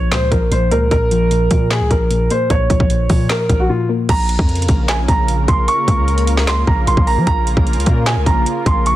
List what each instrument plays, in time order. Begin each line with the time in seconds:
Already playing: 808-style bass A#1, synth pluck A#2 F3 A#3
0.12 808-style bass C#2, synth pluck A#2, grand piano C5, snare, clap, closed hi-hat
0.31 808-style bass A#1, synth pluck F3, grand piano A#4, kick, closed hi-hat
0.51 808-style bass A#1, synth pluck A#2, grand piano C5, closed hi-hat
0.71 808-style bass C#2, synth pluck A#3, grand piano A#4, closed hi-hat
0.91 808-style bass A#1, synth pluck A#2, grand piano A#4, kick, closed hi-hat
1.11 synth pluck F3, closed hi-hat
1.31 synth pluck A#2, closed hi-hat
1.51 808-style bass A#2, synth pluck F3, kick, closed hi-hat
1.71 synth pluck A#2, grand piano G#4, snare, clap, closed hi-hat
1.81 808-style bass C#2
1.91 808-style bass A#1, synth pluck F3, grand piano A#4, kick, closed hi-hat
2.11 synth pluck A#2, closed hi-hat
2.30 synth pluck A#3, grand piano C5, closed hi-hat
2.50 808-style bass A#1, synth pluck A#2, grand piano C#5, kick, closed hi-hat
2.70 808-style bass A#1, synth pluck F3, kick, closed hi-hat
2.80 808-style bass A#1, kick
2.90 synth pluck A#2, closed hi-hat
3.09 808-style bass A#2, synth pluck F3, kick, open hi-hat
3.30 synth pluck A#2, grand piano A#4, snare, clap, closed hi-hat
3.49 808-style bass A#1, synth pluck F3, kick, closed hi-hat
3.60 grand piano F#4
3.69 synth pluck A#2, grand piano F4
3.89 synth pluck A#3
4.09 808-style bass A#1, analog synth pad C#3 A#3 F4 A#4, grand piano A#5, kick, closed hi-hat, crash
4.29 closed hi-hat
4.39 808-style bass F2, kick
4.49 closed hi-hat
4.55 closed hi-hat
4.62 closed hi-hat
4.68 808-style bass A#1, kick, closed hi-hat
4.88 grand piano G#5, snare, clap, closed hi-hat
5.08 808-style bass A#1, grand piano A#5, kick, closed hi-hat
5.28 closed hi-hat
5.48 808-style bass A#1, grand piano C6, kick, closed hi-hat
5.68 grand piano C#6, closed hi-hat
5.88 808-style bass C#2, kick, closed hi-hat
6.08 closed hi-hat
6.18 closed hi-hat
6.27 closed hi-hat
6.37 snare
6.47 grand piano C6, snare, clap, closed hi-hat
6.67 808-style bass A#1, grand piano A#5, kick
6.87 808-style bass A#1, grand piano C6, closed hi-hat
6.97 808-style bass A#1, kick
7.07 grand piano A#5, open hi-hat
7.17 808-style bass F3
7.27 808-style bass A#1, analog synth pad C#3 A#4, grand piano A#5, kick, closed hi-hat
7.47 closed hi-hat
7.57 808-style bass A#1, kick
7.67 closed hi-hat
7.73 808-style bass C#2, closed hi-hat
7.80 closed hi-hat
7.86 808-style bass A#2, kick, closed hi-hat
8.06 grand piano G#5, snare, clap, closed hi-hat
8.16 808-style bass C#2
8.26 808-style bass A#1, grand piano A#5, kick, closed hi-hat
8.46 closed hi-hat
8.66 808-style bass A#1, grand piano C6, kick, closed hi-hat
8.86 grand piano C#6, closed hi-hat